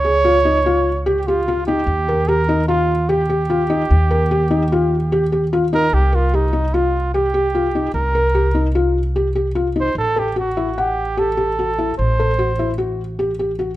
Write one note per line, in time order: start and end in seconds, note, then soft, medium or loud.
0.00 1.84 C#2 medium
0.00 1.03 C#5 loud
0.04 0.16 G#4 medium
0.25 0.36 F4 medium
0.45 0.57 D#4 medium
0.66 0.88 F4 medium
1.06 1.18 G4 medium
1.19 1.28 G4 medium
1.27 1.66 F4 medium
1.27 1.39 G4 medium
1.48 1.59 F4 medium
1.67 1.79 D#4 medium
1.67 2.29 G4 medium
1.87 3.86 D#2 medium
2.08 2.20 A#4 medium
2.28 2.40 G4 medium
2.28 2.68 A#4 medium
2.49 2.60 D#4 medium
2.68 2.91 F4 medium
2.68 3.10 F4 medium
3.09 5.52 G4 medium
3.09 3.20 G4 medium
3.30 3.41 G4 medium
3.50 3.61 F4 medium
3.70 3.81 D#4 medium
3.91 5.89 D#2 medium
4.11 4.22 A#4 medium
4.31 4.42 G4 medium
4.51 4.62 D#4 medium
4.72 4.94 F4 medium
5.12 5.23 G4 medium
5.32 5.43 G4 medium
5.53 5.64 F4 medium
5.73 5.84 D#4 medium
5.73 5.95 A#4 medium
5.93 7.91 C2 medium
5.93 6.16 G4 medium
6.12 6.36 F4 medium
6.12 6.24 A#4 medium
6.34 6.75 D#4 medium
6.34 6.45 G4 medium
6.53 6.64 D#4 medium
6.74 7.14 F4 medium
6.74 6.96 F4 medium
7.14 7.25 G4 medium
7.14 7.91 G4 medium
7.34 7.45 G4 medium
7.55 7.66 F4 medium
7.75 7.86 D#4 medium
7.94 9.92 C2 medium
7.94 8.71 A#4 medium
8.15 8.26 A#4 medium
8.35 8.46 G4 medium
8.55 8.66 D#4 medium
8.75 8.97 F4 medium
9.16 9.27 G4 medium
9.35 9.47 G4 medium
9.55 9.67 F4 medium
9.76 9.87 D#4 medium
9.80 9.97 C5 medium
9.95 11.94 A1 medium
9.95 10.20 A4 medium
10.16 10.38 G4 medium
10.16 10.27 A4 medium
10.36 10.47 F#4 medium
10.36 10.81 F#4 medium
10.57 10.68 E4 medium
10.78 11.20 G4 medium
10.78 11.00 F#5 medium
11.17 11.28 G4 medium
11.17 11.97 A4 medium
11.37 11.48 G4 medium
11.59 11.70 F#4 medium
11.78 11.89 E4 medium
11.98 13.77 A1 medium
11.98 12.75 C5 medium
12.19 12.30 A4 medium
12.39 12.50 F#4 medium
12.59 12.70 E4 medium
12.78 13.00 F#4 medium
13.19 13.30 G4 medium
13.39 13.50 G4 medium
13.59 13.70 F#4 medium